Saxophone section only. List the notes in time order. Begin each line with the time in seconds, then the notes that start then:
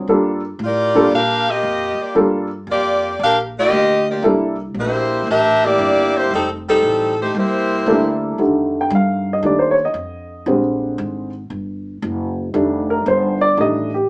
0.64 F4 G4 A#4 D5
1.14 D4 G4 A#4 F5
1.49 A#3 F4 G4 D#5
2.01 A#3 F4 G4 D5
2.71 A#3 F4 G4 D5
3.23 D4 G4 A#4 F5
3.58 A#3 F4 G4 D#5
4.10 A#3 F4 G4 D5
4.79 A#3 E4 G4 C5
5.30 D4 G4 A#4 E5
5.65 A#3 E4 G4 D5
6.17 A#3 E4 G4 C5
6.34 G3 C4 D#4 A4
6.69 G3 C4 D#4 A4
7.21 A3 D#4 G4 C5
7.37 A#3 E4 G4 C5